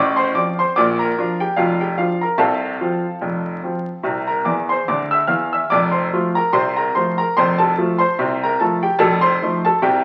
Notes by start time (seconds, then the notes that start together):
Already playing: A1 A2 D5 D6
0.16 C5 C6
0.35 F3 C4 F4 D5 D6
0.59 C5 C6
0.76 A#1 A#2 D5 D6
0.99 A#4 A#5
1.18 F3 D4 F4
1.40 G4 G5
1.56 F1 F2 F4 F5
1.81 G4 G5
1.98 F3 D4 F4 F5
2.21 A#4 A#5
2.38 C2 C3 A4 F5 A5
2.80 F3 C4 F4
3.21 F1 F2
3.63 F3 C4 F4
4.03 C2 C3
4.27 A#4 A#5
4.45 E2 E3 D5 D6
4.69 C5 C6
4.88 D2 D3 D5 D6
5.11 E5 E6
5.27 E2 E3 F5 F6
5.53 E5 E6
5.70 F1 F2 D5 D6
5.91 C5 C6
6.13 F3 A3 F4
6.35 A#4 A#5
6.53 C2 C3 C5 C6
6.77 A#4 A#5
6.95 F3 A3 F4 C5 C6
7.18 A#4 A#5
7.37 F1 F2 C5 C6
7.58 A4 A5
7.77 F3 A3 F4
7.99 C5 C6
8.19 C2 C3
8.44 A#4 A#5
8.60 F3 A3 F4 A4 A5
8.83 G4 G5
8.99 F1 F2 A4 A5
9.21 C5 C6
9.42 F3 A3 D#4
9.65 A4 A5
9.82 C2 C3 G4 G5